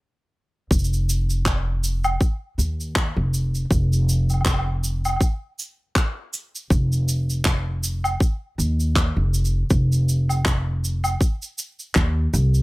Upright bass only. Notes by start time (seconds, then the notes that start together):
0.71 F1
2.58 D#2
3.16 F1
3.71 F1
6.70 F1
8.58 D#2
9.17 F1
9.71 F1
11.96 D#2
12.33 C2